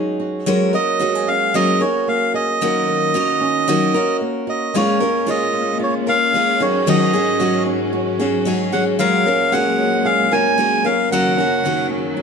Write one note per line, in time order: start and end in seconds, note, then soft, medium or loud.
0.00 0.46 D#3 medium
0.00 0.46 F#3 soft
0.00 0.73 G#3 medium
0.00 0.47 C#4 soft
0.00 1.27 C#4 medium
0.00 0.47 D#4 medium
0.00 0.19 F#4 medium
0.00 0.48 G#4 medium
0.20 1.00 F#4 medium
0.46 0.73 F#3 medium
0.46 3.97 F#3 medium
0.46 0.74 G#3 medium
0.46 0.74 C#4 medium
0.46 0.73 F#4 medium
0.46 0.72 A#4 loud
0.73 1.53 A#3 medium
0.73 0.99 C#4 soft
0.73 1.00 F#4 soft
0.73 1.00 A#4 soft
0.73 1.29 D#5 medium
0.99 1.53 G#3 medium
0.99 1.55 C#4 medium
0.99 1.15 F#4 medium
0.99 1.55 F#4 medium
0.99 1.56 A#4 medium
1.15 1.79 G#4 soft
1.27 3.40 C#4 medium
1.27 1.55 F5 loud
1.54 1.81 F#3 medium
1.54 1.81 G#3 medium
1.54 2.07 A#3 medium
1.54 1.81 C#4 medium
1.54 1.80 F#4 medium
1.54 1.79 A#4 medium
1.54 1.82 D#5 loud
1.81 2.62 C#4 soft
1.81 2.62 F#4 soft
1.81 2.33 G#4 medium
1.81 2.62 A#4 soft
1.81 2.08 C#5 medium
2.08 2.61 A#3 medium
2.08 2.33 F5 medium
2.34 2.67 G#4 medium
2.34 4.17 D#5 medium
2.61 3.13 D#3 medium
2.61 3.14 F#3 medium
2.61 2.88 A#3 medium
2.61 3.15 C#4 medium
2.61 3.15 F#4 medium
2.61 3.16 A#4 medium
2.88 3.67 A#3 medium
3.14 3.67 D#3 medium
3.14 3.68 C#4 medium
3.14 3.93 F#4 medium
3.14 3.68 F#4 medium
3.14 3.69 A#4 medium
3.41 5.00 C#4 medium
3.67 3.94 D#3 medium
3.67 3.94 F#3 medium
3.67 4.21 A#3 medium
3.67 3.95 C#4 medium
3.67 3.95 F#4 loud
3.67 3.93 A#4 loud
3.94 4.75 C#4 soft
3.94 4.46 F#4 medium
3.94 4.75 F#4 medium
3.94 4.74 A#4 medium
4.21 4.73 A#3 medium
4.47 4.80 F#4 medium
4.47 4.76 D#5 medium
4.74 5.01 A#2 medium
4.74 6.59 A#2 medium
4.74 6.32 G#3 medium
4.74 5.01 G#3 medium
4.74 6.59 G#3 medium
4.74 8.95 C#4 medium
4.74 5.01 C#4 medium
4.74 5.01 F4 medium
4.74 4.99 A#4 medium
4.74 5.30 C#5 medium
5.00 5.53 C#4 medium
5.00 5.27 C#4 soft
5.00 5.27 F4 soft
5.00 5.27 A#4 medium
5.26 6.10 G#3 medium
5.26 6.09 C#4 medium
5.26 5.78 F4 medium
5.26 6.07 F4 medium
5.26 6.06 A#4 medium
5.26 5.78 D#5 medium
5.53 6.06 C#4 medium
5.79 6.66 F4 medium
5.79 5.95 C#5 medium
6.06 6.89 C#4 medium
6.06 6.34 C#4 soft
6.06 6.34 F4 soft
6.06 6.34 A#4 soft
6.06 6.63 F5 loud
6.33 7.43 G#3 medium
6.33 6.61 G#3 medium
6.33 6.60 C#4 medium
6.33 6.60 F4 medium
6.33 6.60 A#4 medium
6.59 8.96 G#2 medium
6.59 6.85 D#3 medium
6.59 11.07 F#3 medium
6.59 6.86 F#3 soft
6.59 6.86 C#4 soft
6.59 6.87 F#4 soft
6.59 6.87 G#4 medium
6.59 6.88 C#5 medium
6.86 7.13 G#2 medium
6.86 8.99 D#3 medium
6.86 7.14 D#3 medium
6.86 7.14 F#3 medium
6.86 7.14 C#4 medium
6.86 7.13 F#4 loud
6.86 7.12 G#4 medium
6.86 7.63 D#5 medium
7.13 7.39 F#3 soft
7.13 7.66 C#4 medium
7.13 7.39 C#4 soft
7.13 7.40 F#4 soft
7.13 7.40 G#4 medium
7.40 8.21 F#3 medium
7.40 8.21 C#4 medium
7.40 7.92 F#4 medium
7.40 8.20 F#4 medium
7.40 8.19 G#4 medium
7.66 8.19 C#4 medium
7.93 9.51 F#4 medium
8.19 8.44 F#3 medium
8.19 8.72 C#4 medium
8.19 8.45 C#4 soft
8.19 8.46 F#4 medium
8.19 8.46 G#4 medium
8.45 8.72 F#3 medium
8.45 10.57 G#3 medium
8.45 8.72 C#4 medium
8.45 8.71 F#4 medium
8.45 8.71 G#4 medium
8.72 8.98 F#3 soft
8.72 9.25 C#4 medium
8.72 8.99 C#4 soft
8.72 8.99 F#4 soft
8.72 8.99 G#4 medium
8.72 8.85 F#5 medium
8.98 11.09 A#2 medium
8.98 9.25 F#3 medium
8.98 12.22 F#3 medium
8.98 11.09 G#3 medium
8.98 9.26 G#3 medium
8.98 9.26 C#4 medium
8.98 9.26 F#4 medium
8.98 9.25 A#4 medium
8.98 9.54 F5 loud
9.26 9.79 C#4 medium
9.26 9.52 C#4 soft
9.26 9.53 F#4 soft
9.26 9.52 A#4 medium
9.52 10.32 G#3 medium
9.52 10.34 C#4 medium
9.52 10.32 F#4 medium
9.52 10.04 G#4 medium
9.52 10.31 A#4 medium
9.52 10.07 F#5 medium
9.79 10.32 C#4 medium
10.05 11.17 G#4 medium
10.05 10.33 F5 loud
10.32 10.84 C#4 medium
10.32 10.57 C#4 soft
10.32 10.58 F#4 soft
10.32 10.58 A#4 medium
10.32 10.87 G#5 loud
10.58 10.84 G#3 medium
10.58 11.10 A#3 medium
10.58 10.85 C#4 medium
10.58 10.85 F#4 medium
10.58 10.83 A#4 medium
10.84 11.37 C#4 medium
10.84 11.12 C#4 soft
10.84 11.12 F#4 soft
10.84 11.11 A#4 medium
10.84 11.10 F5 medium
11.11 12.22 F#2 medium
11.11 12.22 C#3 medium
11.11 11.38 D#3 medium
11.11 12.22 F#3 medium
11.11 11.38 F#3 medium
11.11 12.22 A#3 medium
11.11 11.39 C#4 medium
11.11 11.39 F#4 medium
11.11 11.37 A#4 medium
11.11 11.87 F#5 loud
11.37 11.90 C#4 medium
11.37 11.64 C#4 soft
11.37 11.65 F#4 soft
11.37 11.64 A#4 soft
11.64 12.22 D#3 medium
11.64 12.22 C#4 medium
11.64 12.16 F#4 medium
11.64 12.22 F#4 medium
11.64 12.22 A#4 medium
11.90 12.22 C#4 medium
12.17 12.22 F#4 medium